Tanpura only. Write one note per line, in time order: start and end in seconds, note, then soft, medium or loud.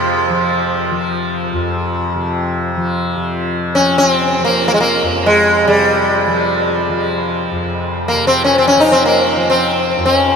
0.00 1.52 F2 medium
0.00 2.15 C3 medium
0.00 0.30 F3 medium
0.30 0.91 F3 medium
0.91 2.77 F3 medium
1.53 5.03 F2 medium
2.15 3.16 C3 medium
2.77 3.78 F3 medium
3.16 5.66 C3 medium
3.78 4.40 F3 medium
4.40 6.27 F3 medium
5.03 7.51 F2 medium
5.66 8.13 C3 medium
6.27 6.89 F3 medium
6.89 8.75 F3 medium
7.51 9.98 F2 medium
8.13 10.36 C3 medium
8.75 9.36 F3 medium
9.36 10.36 F3 medium
9.98 10.36 F2 medium